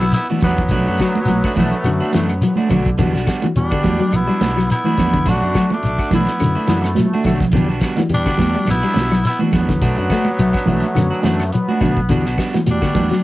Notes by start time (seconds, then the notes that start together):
Already playing: B1 B3 E4
0.01 F#3, claves, shekere
0.12 E4, snare, closed hi-hat, shekere
0.16 B3
0.29 E3 B3 D4 F#4, high conga, shekere
0.40 E2 G3 B3 D4 F#4, kick, closed hi-hat, low conga, claves, shekere
0.45 F#3
0.56 kick, closed hi-hat, shekere
0.68 B1 F#3 A3 D4 F#4, kick, closed hi-hat, low conga, shekere
0.85 F#2 A3 B3 D4 F#4, shekere
0.97 F#3 A3 D4 F#4, kick, snare, closed hi-hat, claves, shekere
1.13 muted fingered electric bass stroke, high conga, shekere
1.25 B1 F#3, closed hi-hat, high conga, shekere
1.42 A3 D4 F#4, kick, snare, claves, shekere
1.55 B1 E3 F#3 A3 D4 F#4, kick, snare, open hi-hat, high conga, low conga, shekere
1.71 closed hi-hat, shekere
1.84 F#2 D3 A3 B3 D4 F#4, closed hi-hat, claves, shekere
2.00 A3 D4 F#4, muted fingered electric bass stroke, shekere
2.13 F#2 E3 F#3 A3 D4, snare, closed hi-hat, high conga, shekere
2.29 closed hi-hat, claves, shekere
2.41 D3 F#3, closed hi-hat, shekere
2.56 A3 D4 F#4, high conga, shekere
2.69 B1 D3 F#3 A3 B3 D4 F#4, kick, closed hi-hat, high conga, low conga, claves, shekere
2.86 kick, shekere
2.98 E2 D3 G3 B3 D4 F#4, kick, closed hi-hat, low conga, shekere
3.14 B1 B3 D4 F#4, snare, shekere
3.27 G3 B3 D4 F#4, kick, snare, closed hi-hat, claves, shekere
3.42 E3 G3 B3 D4 F#4, muted fingered electric bass stroke, closed hi-hat, high conga, shekere
3.56 E2 G3 B3 D4 F#4, closed hi-hat, shekere
3.71 D3 B3 D4 F#4, kick, claves, shekere
3.83 E2 G3 B3 D4 F#4, kick, open hi-hat, high conga, low conga, shekere
4.00 F#3, shekere
4.13 B1 B3 E4, closed hi-hat, low conga, claves, shekere
4.28 G3 B3 D4 F#4, muted fingered electric bass stroke, shekere
4.41 B1 G3 B3 D4 F#4, snare, closed hi-hat, high conga, shekere
4.57 F#3, snare, claves, shekere
4.70 B3 E4, snare, closed hi-hat, shekere
4.84 E3 B3 D4 F#4, high conga, shekere
4.98 E2 G3 B3 D4 F#4, kick, snare, closed hi-hat, high conga, low conga, claves, shekere
5.13 D3, kick, closed hi-hat, shekere
5.26 B1 F#3 A3 D4 F#4, kick, closed hi-hat, low conga, shekere
5.42 F#2 A3 B3 D4 F#4, shekere
5.54 F#3 A3 D4 F#4, kick, snare, closed hi-hat, claves, shekere
5.70 A3 D4, muted fingered electric bass stroke, snare, high conga, shekere
5.83 B1, closed hi-hat, shekere
5.99 D4 F#4, muted clean electric guitar stroke, kick, claves, shekere
6.11 B1 E3 F#3 A3 B3 D4 F#4, kick, snare, open hi-hat, high conga, low conga, shekere
6.15 E4
6.27 snare, closed hi-hat, shekere
6.40 F#2 D3 A3 B3 D4 F#4, closed hi-hat, claves, shekere
6.55 A3 D4 F#4, muted fingered electric bass stroke, shekere
6.67 F#2 E3 F#3 A3 B3 D4 F#4, snare, closed hi-hat, high conga, shekere
6.83 A3, snare, closed hi-hat, claves, shekere
6.95 F#3, snare, closed hi-hat, high conga, shekere
7.06 high conga
7.14 A3 D4 F#4, high conga, shekere
7.24 B1 D3 F#3 A3 B3 D4 F#4, kick, closed hi-hat, low conga, claves, shekere
7.40 kick, snare, low conga, shekere
7.52 E2 D3 G3 B3 D4 F#4, muted clean electric guitar stroke, kick, closed hi-hat, low conga
7.56 shekere
7.69 B1 B3 D4 F#4, shekere
7.81 G3 B3 D4 F#4, kick, snare, closed hi-hat, claves, shekere
7.96 E3 G3 B3 D4 F#4, muted fingered electric bass stroke, snare, closed hi-hat, high conga
8.01 shekere
8.09 E2 G3 B3 D4 G4, closed hi-hat
8.13 G3 D4, shekere
8.26 D3 B3 D4 F#4, kick, snare, claves, shekere
8.37 E2 G3 B3 D4 F#4, kick, open hi-hat, high conga, low conga, shekere
8.55 G3, shekere
8.65 B1, snare, closed hi-hat, low conga, claves
8.70 B3 E4, shekere
8.83 G3 B3 D4 F#4, muted fingered electric bass stroke, shekere
8.94 B1 G3 B3 D4 F#4, snare, closed hi-hat, high conga, shekere
9.11 F#3, snare, claves, shekere
9.25 E4, snare, closed hi-hat, shekere
9.29 B3
9.39 E3 B3 D4 F#4, high conga, shekere
9.52 E2 G3 B3 D4 F#4, kick, snare, closed hi-hat, high conga, low conga, claves, shekere
9.58 F#3 B3
9.68 D3, kick, snare, closed hi-hat, shekere
9.81 B1 A3 D4 F#4, kick, closed hi-hat, shekere
9.97 F#2 A3 B3 D4 F#4, shekere
10.10 F#3 A3 D4 F#4, kick, snare, closed hi-hat, claves, shekere
10.25 muted fingered electric bass stroke, high conga, shekere
10.39 B1 F#3 A3, closed hi-hat, shekere
10.53 D4 F#4, kick, snare, claves, shekere
10.65 B1 E3 A3 D4 F#4, kick, open hi-hat, high conga, low conga, shekere
10.84 closed hi-hat, shekere
10.95 F#2 D3 F#3 A3 B3 D4 F#4, snare, closed hi-hat, low conga, claves, shekere
11.11 D4 F#4, muted fingered electric bass stroke, shekere
11.23 F#2 E3 A3 D4 F#4, snare, closed hi-hat, high conga, shekere
11.40 snare, closed hi-hat, claves, shekere
11.52 F#3 B3, closed hi-hat, shekere
11.68 D4 F#4, high conga, shekere
11.80 B1 D3 A3 B3 D4 F#4, kick, closed hi-hat, low conga, claves
11.85 shekere
11.97 kick, shekere
12.09 E2 D3 G3 B3 D4 F#4, muted clean electric guitar stroke, kick, closed hi-hat, shekere
12.26 B1 B3 D4 F#4, snare, shekere
12.38 G3 B3 D4 F#4, kick, snare, closed hi-hat, claves, shekere
12.54 E3 G3 B3 D4 F#4, muted fingered electric bass stroke, snare, closed hi-hat, high conga, shekere
12.66 E2 G3 B3 D4 F#4, closed hi-hat, high conga, shekere
12.71 D4
12.81 D3 B3 D4 F#4, kick, snare, claves, shekere
12.94 E2 G3 B3 D4 F#4, kick, open hi-hat, high conga, low conga, shekere
13.11 F#3, snare, shekere